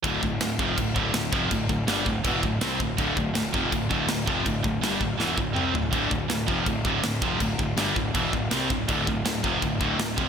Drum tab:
CC |x-x-x-x-|x-x-x-x-|x-x-x-x-|x-x-----|
SD |--o---o-|--o---o-|--o---o-|--o-o---|
T2 |--------|--------|--------|------o-|
FT |--------|--------|--------|-------o|
BD |oo-ooo-o|oo-ooo-o|oo-ooo-o|oo-o-o--|

CC |x-x-x-x-|x-x-x-x-|x-x-x-x-|
SD |--o---o-|--o---o-|--o---o-|
T2 |--------|--------|--------|
FT |--------|--------|--------|
BD |oo-ooo-o|oo-ooo-o|oo-ooo-o|